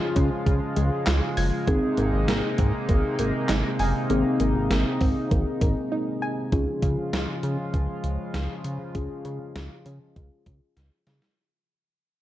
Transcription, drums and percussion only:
0.16 kick loud
0.16 closed hi-hat medium
0.46 kick loud
0.46 closed hi-hat medium
0.76 closed hi-hat medium
1.07 snare loud
1.07 clap medium
1.07 closed hi-hat medium
1.37 open hi-hat medium
1.67 kick loud
1.67 closed hi-hat medium
1.97 closed hi-hat medium
2.28 snare loud
2.28 closed hi-hat medium
2.58 kick loud
2.58 closed hi-hat medium
2.89 kick medium
2.89 closed hi-hat medium
3.19 closed hi-hat medium
3.49 snare loud
3.49 clap medium
3.49 closed hi-hat medium
3.79 open hi-hat medium
4.10 closed hi-hat medium
4.40 closed hi-hat medium
4.71 snare loud
4.71 closed hi-hat medium
5.01 kick loud
5.01 open hi-hat medium
5.31 kick medium
5.31 closed hi-hat medium
5.61 kick loud
5.61 closed hi-hat medium
6.52 kick loud
6.52 closed hi-hat medium
6.82 kick medium
6.82 closed hi-hat medium
7.13 snare loud
7.13 closed hi-hat medium
7.43 closed hi-hat medium
7.74 kick medium
7.74 closed hi-hat medium
8.04 closed hi-hat medium
8.34 snare loud
8.34 closed hi-hat medium
8.64 closed hi-hat medium
8.95 kick loud
8.95 closed hi-hat medium
9.25 closed hi-hat medium
9.56 snare loud
9.56 closed hi-hat medium
9.86 closed hi-hat medium
10.16 kick medium
10.16 closed hi-hat medium
10.46 kick loud
10.46 closed hi-hat medium
10.77 snare medium
10.77 closed hi-hat medium
11.07 snare medium
11.07 closed hi-hat medium
11.22 snare medium

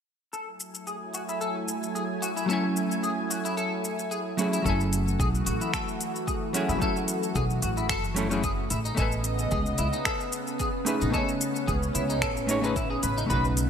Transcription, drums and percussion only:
0.33 shaker soft
0.60 shaker medium
0.75 shaker soft
0.87 shaker soft
1.14 shaker medium
1.29 shaker soft
1.41 shaker soft
1.68 shaker medium
1.83 shaker soft
1.96 shaker soft
2.23 shaker medium
2.37 shaker soft
2.50 shaker soft
2.77 shaker medium
2.92 shaker soft
3.04 shaker soft
3.31 shaker medium
3.46 shaker soft
3.58 shaker soft
3.85 shaker medium
3.99 shaker soft
4.12 shaker soft
4.39 shaker medium
4.53 shaker soft
4.66 kick loud
4.66 shaker soft
4.81 shaker soft
4.93 closed hi-hat medium
4.93 shaker medium
5.08 shaker soft
5.20 kick loud
5.20 shaker soft
5.35 shaker soft
5.47 closed hi-hat medium
5.47 shaker medium
5.61 shaker soft
5.74 finger snap medium
5.74 kick medium
5.74 shaker soft
5.88 shaker soft
6.01 closed hi-hat medium
6.01 shaker medium
6.16 shaker soft
6.28 kick medium
6.28 shaker soft
6.54 closed hi-hat medium
6.54 shaker medium
6.69 shaker soft
6.82 kick loud
6.82 shaker soft
6.96 shaker soft
7.08 closed hi-hat medium
7.08 shaker medium
7.23 shaker soft
7.35 kick loud
7.35 shaker soft
7.50 shaker soft
7.62 closed hi-hat medium
7.62 shaker medium
7.77 shaker soft
7.89 finger snap medium
7.89 kick medium
7.89 shaker soft
8.04 shaker soft
8.16 closed hi-hat medium
8.16 shaker medium
8.31 shaker soft
8.43 kick loud
8.43 shaker soft
8.70 closed hi-hat medium
8.70 shaker medium
8.85 shaker soft
8.97 kick loud
8.97 shaker soft
9.12 shaker soft
9.24 closed hi-hat medium
9.24 shaker medium
9.39 shaker soft
9.51 kick loud
9.51 shaker soft
9.66 shaker soft
9.78 closed hi-hat medium
9.78 shaker medium
9.93 shaker soft
10.05 finger snap medium
10.05 kick loud
10.05 shaker soft
10.20 shaker soft
10.32 closed hi-hat medium
10.32 shaker medium
10.47 shaker soft
10.60 kick medium
10.60 shaker soft
10.86 closed hi-hat medium
10.86 shaker medium
11.01 shaker soft
11.14 kick loud
11.14 shaker soft
11.29 shaker soft
11.41 closed hi-hat medium
11.41 shaker medium
11.56 shaker soft
11.68 kick loud
11.68 shaker soft
11.83 shaker soft
11.95 closed hi-hat medium
11.95 shaker medium
12.10 shaker soft
12.22 finger snap medium
12.22 kick medium
12.22 shaker soft
12.37 shaker soft
12.49 closed hi-hat medium
12.49 shaker medium
12.64 shaker soft
12.76 kick loud
12.76 shaker soft
13.03 closed hi-hat medium
13.03 shaker medium
13.18 shaker soft
13.30 kick medium
13.30 shaker soft
13.45 shaker soft
13.57 closed hi-hat medium
13.57 shaker medium

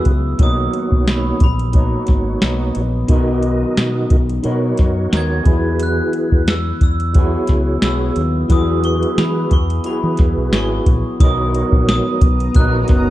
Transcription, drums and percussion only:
0.05 kick medium
0.05 closed hi-hat medium
0.39 kick medium
0.39 closed hi-hat medium
0.73 closed hi-hat medium
0.92 kick medium
1.07 snare loud
1.07 closed hi-hat medium
1.40 kick medium
1.40 closed hi-hat medium
1.59 closed hi-hat soft
1.73 kick medium
1.73 closed hi-hat medium
2.07 kick medium
2.07 snare soft
2.07 closed hi-hat medium
2.42 snare loud
2.42 closed hi-hat medium
2.75 closed hi-hat medium
3.08 kick medium
3.08 closed hi-hat medium
3.43 closed hi-hat medium
3.77 snare loud
3.77 closed hi-hat medium
4.10 kick medium
4.10 closed hi-hat medium
4.29 closed hi-hat soft
4.44 closed hi-hat medium
4.77 kick medium
4.77 snare soft
4.77 closed hi-hat medium
5.13 snare loud
5.13 closed hi-hat medium
5.46 kick medium
5.46 closed hi-hat medium
5.80 closed hi-hat medium
6.13 closed hi-hat medium
6.32 kick medium
6.48 snare loud
6.48 closed hi-hat medium
6.81 kick medium
6.81 closed hi-hat medium
7.00 closed hi-hat soft
7.14 kick loud
7.14 closed hi-hat medium
7.47 kick medium
7.47 snare soft
7.47 closed hi-hat medium
7.82 snare loud
7.82 closed hi-hat medium
8.16 closed hi-hat medium
8.50 kick medium
8.50 closed hi-hat medium
8.84 closed hi-hat medium
9.03 closed hi-hat soft
9.18 snare loud
9.18 closed hi-hat medium
9.51 kick medium
9.51 closed hi-hat medium
9.70 closed hi-hat soft
9.84 closed hi-hat medium
10.17 kick medium
10.17 snare soft
10.17 closed hi-hat medium
10.53 snare loud
10.53 closed hi-hat medium
10.86 kick medium
10.86 closed hi-hat medium
11.20 kick loud
11.20 closed hi-hat loud
11.55 closed hi-hat medium
11.73 kick medium
11.89 snare loud
11.89 closed hi-hat medium
12.21 kick loud
12.21 closed hi-hat medium
12.40 closed hi-hat medium
12.54 kick loud
12.54 closed hi-hat medium
12.88 kick medium
12.88 snare soft
12.88 closed hi-hat medium

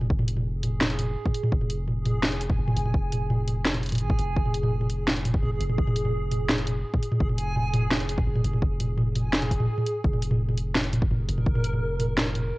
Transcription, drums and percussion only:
0.01 mid tom medium
0.10 kick loud
0.19 mid tom medium
0.28 closed hi-hat medium
0.37 mid tom medium
0.63 closed hi-hat medium
0.63 mid tom medium
0.81 snare loud
0.81 mid tom medium
0.90 closed hi-hat soft
0.99 closed hi-hat medium
0.99 mid tom medium
1.25 kick loud
1.25 mid tom medium
1.34 closed hi-hat medium
1.43 mid tom medium
1.52 kick loud
1.61 mid tom soft
1.70 closed hi-hat medium
1.88 mid tom soft
2.06 closed hi-hat medium
2.06 mid tom medium
2.23 snare loud
2.23 mid tom medium
2.32 closed hi-hat soft
2.41 closed hi-hat medium
2.50 kick loud
2.50 mid tom soft
2.68 mid tom medium
2.77 closed hi-hat medium
2.85 mid tom medium
2.94 kick loud
3.12 closed hi-hat medium
3.12 mid tom soft
3.30 mid tom medium
3.48 closed hi-hat medium
3.48 mid tom soft
3.65 snare loud
3.74 closed hi-hat soft
3.74 mid tom soft
3.83 closed hi-hat soft
3.86 closed hi-hat soft
3.89 closed hi-hat soft
3.92 closed hi-hat medium
3.92 mid tom medium
3.95 closed hi-hat medium
3.98 closed hi-hat medium
4.10 kick loud
4.10 mid tom soft
4.18 closed hi-hat medium
4.36 kick loud
4.45 mid tom soft
4.54 closed hi-hat medium
4.63 mid tom medium
4.81 mid tom medium
4.89 closed hi-hat medium
5.07 snare loud
5.07 mid tom soft
5.16 closed hi-hat soft
5.25 closed hi-hat medium
5.25 mid tom medium
5.34 kick loud
5.43 mid tom medium
5.60 closed hi-hat medium
5.69 mid tom soft
5.78 kick loud
5.87 mid tom medium
5.96 closed hi-hat medium
6.05 mid tom medium
6.31 closed hi-hat medium
6.31 mid tom medium
6.49 snare loud
6.49 mid tom medium
6.58 closed hi-hat soft
6.67 closed hi-hat medium
6.67 mid tom medium
6.94 kick loud
6.94 mid tom medium
7.03 closed hi-hat medium
7.12 mid tom medium
7.20 kick loud
7.29 mid tom medium
7.38 closed hi-hat medium
7.56 mid tom medium
7.74 closed hi-hat medium
7.74 mid tom medium
7.91 snare loud
7.91 mid tom medium
8.00 closed hi-hat soft
8.09 closed hi-hat medium
8.18 kick loud
8.18 mid tom medium
8.35 mid tom medium
8.44 closed hi-hat medium
8.53 mid tom medium
8.62 kick loud
8.80 closed hi-hat medium
8.80 mid tom medium
8.98 mid tom medium
9.16 closed hi-hat medium
9.16 mid tom medium
9.33 snare loud
9.42 closed hi-hat soft
9.42 mid tom medium
9.51 kick medium
9.51 closed hi-hat medium
9.60 mid tom medium
9.78 mid tom medium
9.86 closed hi-hat medium
10.04 kick loud
10.13 mid tom medium
10.22 closed hi-hat medium
10.31 mid tom medium
10.49 mid tom medium
10.58 closed hi-hat medium
10.75 snare loud
10.75 mid tom medium
10.84 closed hi-hat soft
10.93 closed hi-hat medium
10.93 mid tom medium
11.02 kick loud
11.11 mid tom medium
11.29 closed hi-hat medium
11.38 mid tom medium
11.46 kick loud
11.55 mid tom medium
11.64 closed hi-hat medium
11.73 mid tom medium
12.00 closed hi-hat medium
12.00 mid tom medium
12.18 snare loud
12.18 mid tom medium
12.35 closed hi-hat medium
12.35 mid tom medium

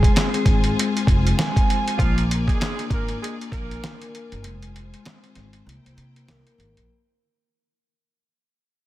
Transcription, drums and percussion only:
0.03 kick loud
0.03 closed hi-hat medium
0.16 snare loud
0.16 clap loud
0.16 closed hi-hat medium
0.34 closed hi-hat medium
0.46 kick loud
0.46 snare soft
0.46 closed hi-hat medium
0.64 closed hi-hat medium
0.79 closed hi-hat medium
0.97 closed hi-hat soft
1.07 kick medium
1.07 closed hi-hat medium
1.27 closed hi-hat medium
1.39 snare loud
1.39 clap loud
1.39 closed hi-hat medium
1.56 kick loud
1.56 closed hi-hat medium
1.70 closed hi-hat medium
1.88 closed hi-hat medium
1.99 kick loud
1.99 closed hi-hat medium
2.18 closed hi-hat medium
2.31 closed hi-hat medium
2.48 kick loud
2.48 closed hi-hat medium
2.61 snare loud
2.61 clap loud
2.61 closed hi-hat medium
2.79 closed hi-hat medium
2.90 kick loud
2.90 closed hi-hat medium
3.08 closed hi-hat medium
3.24 closed hi-hat medium
3.41 closed hi-hat soft
3.52 kick loud
3.52 closed hi-hat medium
3.71 closed hi-hat medium
3.84 snare loud
3.84 clap loud
3.84 closed hi-hat medium
4.02 closed hi-hat medium
4.15 closed hi-hat medium
4.32 closed hi-hat medium
4.44 closed hi-hat medium
4.62 closed hi-hat medium
4.76 closed hi-hat medium
4.94 closed hi-hat medium
5.05 snare loud
5.05 clap loud
5.05 closed hi-hat medium
5.24 closed hi-hat medium
5.35 snare soft
5.35 closed hi-hat medium
5.53 closed hi-hat medium
5.69 closed hi-hat medium
5.86 closed hi-hat soft
5.98 closed hi-hat medium
6.16 closed hi-hat medium
6.28 snare loud
6.28 clap loud
6.28 closed hi-hat medium
6.47 closed hi-hat medium
6.60 closed hi-hat medium
6.77 closed hi-hat medium

